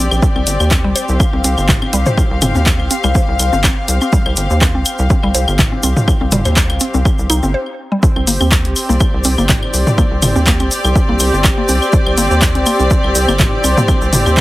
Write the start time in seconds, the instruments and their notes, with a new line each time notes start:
Already playing: string section C4 G4 D5
0.11 analog synth bass A#1, claves, shaker
0.22 synth arpeggio sound C4, kick, shaker
0.36 analog synth bass C2, synth arpeggio sound C4, claves
0.47 analog synth bass G1, closed hi-hat, shaker
0.60 analog synth bass D#2, claves, shaker
0.71 synth arpeggio sound C4, kick, clap, shaker
0.84 analog synth bass C2, synth arpeggio sound G3
0.96 synth arpeggio sound C5, closed hi-hat, claves, shaker
1.09 analog synth bass C2, shaker
1.16 string section F5, kick, claves, shaker
1.33 analog synth bass C2, synth arpeggio sound C4
1.44 analog synth bass C2, synth arpeggio sound C4, closed hi-hat, shaker
1.58 analog synth bass G1, claves, shaker
1.69 kick, clap, mid tom, shaker
1.82 synth arpeggio sound C4, claves
1.93 analog synth bass C2, synth arpeggio sound G3, closed hi-hat, shaker
2.06 synth arpeggio sound C5, mid tom, shaker
2.17 kick, claves, shaker
2.31 analog synth bass C2
2.42 analog synth bass G1, synth arpeggio sound C4, closed hi-hat, mid tom, claves, shaker
2.55 analog synth bass D#2, synth arpeggio sound C4, shaker
2.66 kick, clap, shaker
2.79 analog synth bass C2, claves
2.91 synth arpeggio sound C4, closed hi-hat, shaker
3.04 analog synth bass C2, synth arpeggio sound G3, claves, shaker
3.15 synth arpeggio sound C5, kick, shaker
3.28 analog synth bass C2
3.39 analog synth bass C2, closed hi-hat, claves, shaker
3.53 analog synth bass G1, synth arpeggio sound C4, shaker
3.64 synth arpeggio sound C4, kick, clap, claves, shaker
3.88 analog synth bass C2, closed hi-hat, shaker
4.01 synth arpeggio sound C4, claves, shaker
4.13 synth arpeggio sound G3, kick, shaker
4.26 analog synth bass C2, synth arpeggio sound C5, claves
4.36 analog synth bass G1, closed hi-hat, shaker
4.50 analog synth bass D#2, shaker
4.61 synth arpeggio sound C4, kick, clap, claves, shaker
4.75 analog synth bass C2, synth arpeggio sound C4
4.85 closed hi-hat, claves, shaker
4.98 analog synth bass C2, shaker
5.10 synth arpeggio sound C4, kick, shaker
5.23 analog synth bass C2, synth arpeggio sound G3, claves
5.34 analog synth bass C2, synth arpeggio sound C5, closed hi-hat, shaker
5.48 analog synth bass G1, claves, shaker
5.59 kick, clap, mid tom, shaker
5.72 synth arpeggio sound C4
5.83 analog synth bass C2, synth arpeggio sound C4, closed hi-hat, claves, shaker
5.97 mid tom, shaker
6.08 kick, claves, shaker
6.21 analog synth bass C2, synth arpeggio sound C4
6.32 analog synth bass G1, synth arpeggio sound G3, closed hi-hat, mid tom, shaker
6.45 analog synth bass D#2, synth arpeggio sound C5, closed hi-hat, claves, shaker
6.56 kick, clap, shaker
6.70 analog synth bass C2, closed hi-hat, claves
6.80 synth arpeggio sound C4, closed hi-hat, shaker
6.94 analog synth bass C2, synth arpeggio sound C4, shaker
7.05 kick, claves, shaker
7.19 analog synth bass C2, shaker
7.30 analog synth bass C2, synth arpeggio sound D#4, closed hi-hat, claves, shaker
7.43 analog synth bass G1, synth arpeggio sound C4, shaker
7.54 synth arpeggio sound C5
7.92 synth arpeggio sound G3
8.03 string section C4, kick, shaker
8.16 analog synth bass C2, synth arpeggio sound C4, claves
8.22 string section G4
8.27 analog synth bass G1, synth arpeggio sound A#3, open hi-hat, shaker
8.41 analog synth bass D#2, synth arpeggio sound C4, claves, shaker
8.51 kick, clap, shaker
8.65 analog synth bass C2, closed hi-hat
8.76 open hi-hat, claves, shaker
8.88 analog synth bass C2, synth arpeggio sound A#3, string section D5, shaker
9.00 kick, claves, shaker
9.14 analog synth bass C2
9.24 analog synth bass C2, synth arpeggio sound C4, open hi-hat, shaker
9.38 analog synth bass G1, synth arpeggio sound A#3, claves, shaker
9.49 synth arpeggio sound C4, kick, clap, mid tom, shaker
9.63 claves
9.74 analog synth bass C2, open hi-hat, shaker
9.87 mid tom, shaker
9.98 synth arpeggio sound A#3, kick, claves, shaker
10.11 analog synth bass C2
10.22 analog synth bass G1, mid tom, open hi-hat, claves, shaker
10.36 analog synth bass D#2, synth arpeggio sound C4, shaker
10.47 synth arpeggio sound A#3, kick, clap, shaker
10.60 analog synth bass C2, synth arpeggio sound C4, closed hi-hat, claves
10.71 open hi-hat, shaker
10.84 analog synth bass C2, claves, shaker
10.96 kick, shaker
11.09 analog synth bass C2, synth arpeggio sound A#3
11.19 analog synth bass C2, open hi-hat, claves, shaker
11.33 analog synth bass G1, shaker
11.44 synth arpeggio sound C4, kick, clap, claves, shaker
11.58 synth arpeggio sound A#3
11.69 analog synth bass C2, synth arpeggio sound C4, open hi-hat, shaker
11.82 claves, shaker
11.93 kick, shaker
12.06 analog synth bass C2, claves
12.17 analog synth bass G1, synth arpeggio sound A#3, open hi-hat, shaker
12.31 analog synth bass D#2, shaker
12.42 kick, clap, claves, shaker
12.55 analog synth bass C2, synth arpeggio sound C4, closed hi-hat
12.66 synth arpeggio sound A#3, open hi-hat, claves, shaker
12.80 analog synth bass C2, synth arpeggio sound C4, shaker
12.90 kick, shaker
13.04 analog synth bass C2, claves
13.15 analog synth bass C2, open hi-hat, shaker
13.28 analog synth bass G1, synth arpeggio sound A#3, claves, shaker
13.39 kick, clap, mid tom, shaker
13.64 analog synth bass C2, synth arpeggio sound C4, open hi-hat, claves, shaker
13.77 synth arpeggio sound A#3, mid tom, shaker
13.88 synth arpeggio sound C4, kick, claves, shaker
14.02 analog synth bass C2, shaker
14.13 analog synth bass G1, mid tom, open hi-hat, shaker
14.26 analog synth bass D#2, claves, shaker
14.37 synth arpeggio sound A#3, kick, clap, shaker